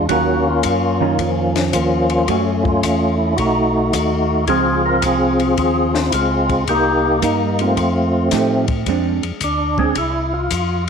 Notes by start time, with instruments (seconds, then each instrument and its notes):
0.09 tonewheel organ D#2 A#3 C#4 F#4, hollow-body jazz guitar D#3 F#3 C#4 F4, kick, ride
0.47 tonewheel organ A#3 C#4 F4
0.63 tonewheel organ F#2, kick, hi-hat pedal, ride
1.01 hollow-body jazz guitar D#3 C#4 F4, tonewheel organ D#4
1.19 tonewheel organ F2 F3 C#4, kick, ride
1.56 snare, ride
1.73 tonewheel organ D#2 A#3 C#4 F4, kick, hi-hat pedal, ride
2.10 ride
2.28 tonewheel organ F#2 A3 C#4 F#4, hollow-body jazz guitar A3 C#4, kick, ride
2.63 tonewheel organ A3 C#4 F4, kick
2.83 tonewheel organ E2, kick, hi-hat pedal, ride
3.18 tonewheel organ E4
3.37 tonewheel organ B1 A3 D#4 F#4, kick, ride
3.93 tonewheel organ D#2 A3 D#4 F#4, kick, hi-hat pedal, ride
4.47 tonewheel organ C#2 C4 F4 G#4, hollow-body jazz guitar F3 G#3 C4, kick, ride
4.86 tonewheel organ A#4
5.02 tonewheel organ C2 C4 F4 G#4, kick, hi-hat pedal, ride
5.40 ride
5.57 tonewheel organ D#2 C4 F4 G#4, kick, ride
5.95 tonewheel organ C#4, snare
6.10 tonewheel organ C#2 E4, kick, hi-hat pedal, ride
6.14 tonewheel organ G#3 C4 F4
6.49 kick, ride
6.68 tonewheel organ C2 A#3 D#4 G4, kick, ride
7.22 tonewheel organ G2 D#4, hollow-body jazz guitar G3 A#3 D#4, kick, hi-hat pedal, ride
7.59 tonewheel organ A3 C4 F4, ride
7.77 tonewheel organ F2, kick, ride
8.31 tonewheel organ A2, hollow-body jazz guitar F3 A3 D#4 G4, kick, snare, hi-hat pedal, ride
8.68 kick, ride
8.86 tonewheel organ F2, hollow-body jazz guitar G#3 C4 D4, kick, ride
9.23 tonewheel organ F2, ride
9.40 tonewheel organ D2 D4, kick, hi-hat pedal, ride
9.78 hollow-body jazz guitar G#3 C4 D4, tonewheel organ G#4, kick
9.95 tonewheel organ C2 E4, kick, ride
10.34 tonewheel organ F4
10.51 tonewheel organ F2, kick, hi-hat pedal, ride